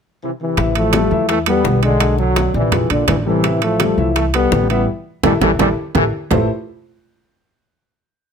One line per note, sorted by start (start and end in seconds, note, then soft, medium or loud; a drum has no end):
0.23 0.31 C3 medium
0.23 0.31 E3 medium
0.41 0.73 C3 medium
0.41 0.74 E3 medium
0.57 1.07 A1 medium
0.57 0.87 E3 medium
0.57 0.87 E4 medium
0.57 0.88 E5 medium
0.57 high bongo medium
0.57 high conga soft
0.57 high timbale medium
0.75 1.26 F3 medium
0.75 1.26 A3 loud
0.75 high conga soft
0.75 high timbale medium
0.93 1.08 G3 medium
0.93 1.08 G4 medium
0.93 1.09 A4 medium
0.93 high bongo medium
0.93 high conga medium
0.93 high timbale medium
1.11 1.61 E2 medium
1.11 1.41 E3 medium
1.11 1.41 E4 medium
1.11 1.41 E5 medium
1.11 high conga soft
1.29 1.37 E3 medium
1.29 1.37 A3 loud
1.29 high bongo medium
1.29 high conga soft
1.29 high timbale medium
1.46 1.76 G3 medium
1.46 1.80 G3 medium
1.46 1.81 B3 loud
1.46 1.76 G4 medium
1.46 1.77 A4 medium
1.46 high conga soft
1.46 high timbale medium
1.64 2.48 B1 medium
1.64 high bongo medium
1.64 low bongo medium
1.64 high conga medium
1.64 low timbale medium
1.83 1.97 D3 medium
1.83 2.17 D3 medium
1.83 2.16 G#3 loud
1.83 1.97 D4 medium
1.83 1.98 D5 medium
1.83 high conga soft
1.83 high timbale medium
2.00 2.15 F#3 medium
2.00 2.15 F#4 medium
2.00 2.16 A4 medium
2.00 high bongo medium
2.00 high conga soft
2.00 high timbale medium
2.18 2.52 D3 medium
2.18 2.48 F#3 medium
2.18 2.52 F#3 loud
2.18 2.48 F#4 medium
2.18 2.48 A4 medium
2.18 high bongo soft
2.18 high conga soft
2.36 high bongo medium
2.36 high conga medium
2.36 high timbale medium
2.54 2.88 A#1 medium
2.54 2.89 C3 medium
2.54 2.69 D3 medium
2.54 2.88 E3 medium
2.54 2.69 D4 medium
2.54 2.69 D5 medium
2.54 high bongo soft
2.54 high conga soft
2.72 2.87 F3 medium
2.72 2.87 F4 medium
2.72 2.87 G#4 medium
2.72 high bongo medium
2.72 high conga soft
2.72 low conga medium
2.72 high timbale medium
2.90 3.07 A#1 medium
2.90 3.07 A#2 medium
2.90 3.19 D3 medium
2.90 3.07 D3 medium
2.90 3.19 D4 medium
2.90 3.20 D5 medium
2.90 high bongo soft
2.90 high conga soft
2.90 high timbale medium
3.08 3.92 A1 medium
3.08 3.17 C3 medium
3.08 3.17 E3 medium
3.08 high bongo medium
3.08 low bongo medium
3.08 high conga medium
3.08 high timbale medium
3.08 low timbale medium
3.26 3.60 C3 medium
3.26 3.60 E3 loud
3.26 3.41 G3 medium
3.26 3.41 G4 medium
3.26 3.41 A4 medium
3.44 3.73 E3 medium
3.44 3.74 E4 medium
3.44 3.74 E5 medium
3.44 high bongo medium
3.44 high conga soft
3.44 high timbale medium
3.62 4.13 F3 medium
3.62 4.12 A3 medium
3.62 high conga soft
3.62 high timbale medium
3.80 3.95 G3 medium
3.80 3.95 G4 medium
3.80 3.95 A4 medium
3.80 high bongo medium
3.80 high conga medium
3.80 high timbale loud
3.98 4.48 C2 medium
3.98 4.27 E3 medium
3.98 4.28 E4 medium
3.98 4.28 E5 medium
3.98 high conga soft
4.16 4.25 E3 medium
4.16 4.24 A3 medium
4.16 high bongo medium
4.16 high conga soft
4.16 high timbale medium
4.34 4.63 G3 medium
4.34 4.68 G3 medium
4.34 4.68 B3 loud
4.34 4.64 G4 medium
4.34 4.64 A4 medium
4.34 high conga soft
4.34 high timbale medium
4.52 4.85 A1 loud
4.52 high bongo medium
4.52 low bongo medium
4.52 high conga medium
4.52 low timbale medium
4.70 4.85 E3 medium
4.70 4.87 G3 medium
4.70 4.86 B3 loud
4.70 4.85 E4 medium
4.70 4.85 E5 medium
4.70 high conga soft
4.70 high timbale medium
5.23 5.37 A1 medium
5.23 5.33 E3 medium
5.23 5.33 G3 loud
5.23 5.33 A3 medium
5.23 5.35 E4 loud
5.23 5.35 G4 medium
5.23 5.35 A4 loud
5.23 low bongo loud
5.23 high conga loud
5.23 high timbale loud
5.41 5.55 A1 medium
5.41 5.51 E3 medium
5.41 5.50 G3 medium
5.41 5.50 A3 medium
5.41 5.53 E4 medium
5.41 5.53 G4 medium
5.41 5.53 A4 medium
5.41 low bongo medium
5.41 high conga medium
5.41 high timbale medium
5.59 5.72 A1 medium
5.59 5.69 E3 medium
5.59 5.69 G3 loud
5.59 5.69 A3 medium
5.59 5.71 E4 medium
5.59 5.71 G4 medium
5.59 5.71 A4 medium
5.59 low bongo loud
5.59 high conga loud
5.59 high timbale medium
5.95 6.08 A1 medium
5.95 6.04 E3 medium
5.95 6.04 G3 medium
5.95 6.04 A3 medium
5.95 6.07 E4 medium
5.95 6.07 G4 loud
5.95 6.07 A4 medium
5.95 low bongo medium
5.95 high conga loud
5.95 high timbale medium
6.30 6.48 A1 medium
6.30 6.47 A3 medium
6.30 6.48 A3 medium
6.30 6.48 E4 medium
6.30 6.48 G4 medium
6.30 6.48 A4 medium
6.30 6.48 B4 medium
6.30 6.48 C5 medium
6.30 low bongo loud
6.30 low conga loud
6.30 low timbale medium